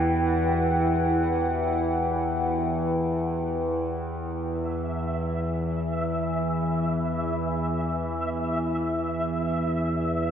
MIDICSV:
0, 0, Header, 1, 4, 480
1, 0, Start_track
1, 0, Key_signature, 1, "minor"
1, 0, Tempo, 500000
1, 9898, End_track
2, 0, Start_track
2, 0, Title_t, "Synth texture"
2, 0, Program_c, 0, 99
2, 4175, Note_on_c, 0, 76, 72
2, 9898, Note_off_c, 0, 76, 0
2, 9898, End_track
3, 0, Start_track
3, 0, Title_t, "Analog synth pad"
3, 0, Program_c, 1, 89
3, 0, Note_on_c, 1, 64, 74
3, 0, Note_on_c, 1, 71, 88
3, 0, Note_on_c, 1, 78, 65
3, 0, Note_on_c, 1, 79, 82
3, 4164, Note_off_c, 1, 71, 0
3, 4165, Note_off_c, 1, 78, 0
3, 4166, Note_off_c, 1, 64, 0
3, 4168, Note_off_c, 1, 79, 0
3, 9898, End_track
4, 0, Start_track
4, 0, Title_t, "Synth drone"
4, 0, Program_c, 2, 95
4, 0, Note_on_c, 2, 40, 69
4, 0, Note_on_c, 2, 52, 67
4, 4142, Note_off_c, 2, 40, 0
4, 4142, Note_off_c, 2, 52, 0
4, 4154, Note_on_c, 2, 40, 69
4, 4154, Note_on_c, 2, 52, 64
4, 9898, Note_off_c, 2, 40, 0
4, 9898, Note_off_c, 2, 52, 0
4, 9898, End_track
0, 0, End_of_file